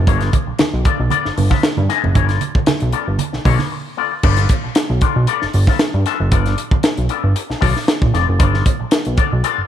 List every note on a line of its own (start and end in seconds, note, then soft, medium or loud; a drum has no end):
0.07 0.30 G1 loud
0.07 0.31 B3 medium
0.07 0.32 F4 medium
0.07 0.32 A4 medium
0.07 0.32 D5 medium
0.07 kick loud
0.07 closed hi-hat medium
0.07 muted conga soft
0.07 low conga medium
0.21 snare soft
0.21 closed hi-hat soft
0.33 kick loud
0.33 closed hi-hat medium
0.33 high conga medium
0.47 0.52 B1 soft
0.47 muted clean electric guitar stroke medium
0.59 muted clean electric guitar stroke soft
0.59 snare loud
0.59 closed hi-hat medium
0.59 muted conga soft
0.59 high conga medium
0.74 0.84 B1 medium
0.85 0.97 B3 medium
0.85 0.98 F4 medium
0.85 0.98 A4 medium
0.85 0.98 D5 medium
0.85 kick loud
0.85 closed hi-hat medium
0.99 1.10 B1 medium
0.99 muted clean electric guitar stroke soft
1.10 1.27 B3 medium
1.10 1.27 F4 medium
1.10 1.27 A4 medium
1.10 1.27 D5 loud
1.10 closed hi-hat medium
1.10 muted conga soft
1.10 high conga medium
1.25 1.31 G1 soft
1.25 snare soft
1.36 1.50 G1 loud
1.36 muted clean electric guitar stroke soft
1.36 open hi-hat medium
1.36 muted conga soft
1.36 high conga medium
1.50 1.62 B3 medium
1.50 1.62 F4 soft
1.50 1.62 A4 medium
1.50 1.62 E5 medium
1.50 kick medium
1.50 snare soft
1.50 high conga medium
1.63 muted clean electric guitar stroke soft
1.63 snare loud
1.63 closed hi-hat medium
1.77 1.88 G2 loud
1.77 muted clean electric guitar stroke soft
1.77 high conga medium
1.89 2.10 B3 medium
1.89 2.02 F4 medium
1.89 2.02 A4 medium
1.89 2.02 E5 medium
1.89 snare soft
1.89 closed hi-hat medium
1.89 muted conga soft
2.03 2.14 F#1 medium
2.03 muted clean electric guitar stroke soft
2.03 low conga medium
2.15 2.39 G1 loud
2.15 2.39 B3 medium
2.15 2.39 F4 medium
2.15 2.40 A4 medium
2.15 2.40 D5 medium
2.15 kick loud
2.15 closed hi-hat medium
2.15 low conga medium
2.29 snare soft
2.29 closed hi-hat soft
2.41 closed hi-hat medium
2.41 high conga medium
2.55 2.60 B1 soft
2.55 muted clean electric guitar stroke soft
2.55 kick medium
2.66 muted clean electric guitar stroke soft
2.66 snare loud
2.66 closed hi-hat medium
2.66 muted conga soft
2.66 high conga medium
2.80 2.93 B1 medium
2.80 closed hi-hat soft
2.92 3.06 B3 medium
2.92 3.06 F4 medium
2.92 3.05 A4 medium
2.92 3.05 D5 medium
2.92 closed hi-hat medium
2.92 muted conga soft
3.06 3.18 G1 medium
3.06 muted clean electric guitar stroke soft
3.19 muted clean electric guitar stroke soft
3.19 closed hi-hat medium
3.19 muted conga soft
3.19 high conga medium
3.33 3.38 B1 soft
3.33 muted clean electric guitar stroke soft
3.33 snare soft
3.45 3.58 B1 medium
3.45 3.66 B3 medium
3.45 3.58 F4 medium
3.45 3.58 A4 loud
3.45 3.58 D5 medium
3.45 kick medium
3.45 open hi-hat medium
3.45 high conga medium
3.59 muted clean electric guitar stroke soft
3.59 snare soft
3.59 high conga medium
3.72 muted clean electric guitar stroke soft
3.97 4.10 B3 medium
3.97 4.10 F4 medium
3.97 4.10 A4 medium
3.97 4.10 D5 medium
4.12 muted clean electric guitar stroke soft
4.23 4.47 G1 loud
4.23 4.48 B3 medium
4.23 4.48 F4 medium
4.23 4.48 A4 medium
4.23 4.48 D5 medium
4.23 kick loud
4.23 crash loud
4.37 snare soft
4.37 closed hi-hat medium
4.49 kick medium
4.49 closed hi-hat medium
4.64 4.69 B1 soft
4.64 muted clean electric guitar stroke soft
4.75 muted clean electric guitar stroke soft
4.75 snare loud
4.75 closed hi-hat loud
4.90 5.01 B1 medium
5.01 5.14 B3 medium
5.01 5.14 F4 medium
5.01 5.14 A4 medium
5.01 5.14 D5 medium
5.01 kick medium
5.01 closed hi-hat medium
5.16 5.27 B1 loud
5.16 muted clean electric guitar stroke soft
5.27 5.43 B3 medium
5.27 5.44 F4 medium
5.27 5.44 A4 loud
5.27 5.44 D5 loud
5.27 closed hi-hat medium
5.42 5.47 G1 medium
5.42 snare soft
5.53 5.66 G1 medium
5.53 muted clean electric guitar stroke soft
5.53 open hi-hat medium
5.67 5.79 B3 medium
5.67 5.79 F4 medium
5.67 5.79 A4 medium
5.67 5.79 E5 medium
5.67 kick medium
5.67 snare soft
5.79 muted clean electric guitar stroke soft
5.79 snare loud
5.79 closed hi-hat loud
5.94 6.05 G2 medium
5.94 muted clean electric guitar stroke soft
6.06 6.21 B3 medium
6.06 6.19 F4 medium
6.06 6.19 A4 medium
6.06 6.19 E5 medium
6.06 snare soft
6.06 closed hi-hat medium
6.19 6.31 F#1 loud
6.19 muted clean electric guitar stroke soft
6.32 6.55 G1 loud
6.32 6.56 B3 medium
6.32 6.56 F4 medium
6.32 6.56 A4 medium
6.32 6.56 D5 medium
6.32 kick loud
6.32 closed hi-hat medium
6.46 snare soft
6.46 closed hi-hat soft
6.58 closed hi-hat medium
6.71 6.77 B1 soft
6.71 muted clean electric guitar stroke medium
6.71 kick loud
6.83 muted clean electric guitar stroke medium
6.83 snare loud
6.83 closed hi-hat loud
6.97 7.09 B1 loud
6.97 closed hi-hat soft
7.09 7.22 B3 medium
7.09 7.22 F4 medium
7.09 7.22 A4 medium
7.09 7.22 D5 medium
7.09 closed hi-hat medium
7.23 7.34 G1 medium
7.23 muted clean electric guitar stroke medium
7.35 muted clean electric guitar stroke soft
7.35 closed hi-hat medium
7.49 7.55 B1 soft
7.49 muted clean electric guitar stroke soft
7.49 snare soft
7.61 7.74 B1 loud
7.61 7.77 B3 medium
7.61 7.74 F4 loud
7.61 7.74 A4 loud
7.61 7.74 D5 loud
7.61 kick medium
7.61 open hi-hat medium
7.75 muted clean electric guitar stroke soft
7.75 snare soft
7.87 muted clean electric guitar stroke soft
7.87 snare loud
7.87 closed hi-hat medium
8.02 8.12 A#1 medium
8.02 kick loud
8.13 8.26 F1 medium
8.13 8.26 B3 medium
8.13 8.26 F4 medium
8.13 8.26 A4 medium
8.13 8.26 D5 medium
8.13 snare soft
8.13 closed hi-hat medium
8.27 8.39 F#1 medium
8.27 muted clean electric guitar stroke medium
8.39 8.63 G1 loud
8.39 8.63 B3 medium
8.39 8.64 F4 medium
8.39 8.64 A4 medium
8.39 8.64 D5 medium
8.39 kick loud
8.39 closed hi-hat medium
8.54 snare soft
8.66 kick medium
8.66 closed hi-hat medium
8.80 8.85 B1 soft
8.80 muted clean electric guitar stroke soft
8.91 muted clean electric guitar stroke soft
8.91 snare loud
8.91 closed hi-hat loud
9.05 9.17 B1 medium
9.05 closed hi-hat soft
9.17 9.29 B3 medium
9.17 9.30 F4 medium
9.17 9.30 A4 medium
9.17 9.30 D5 medium
9.17 kick loud
9.17 closed hi-hat medium
9.32 9.43 B1 medium
9.32 muted clean electric guitar stroke soft
9.44 9.59 B3 medium
9.44 9.59 F4 loud
9.44 9.59 A4 medium
9.44 9.60 D5 loud
9.44 closed hi-hat medium
9.58 9.63 G1 soft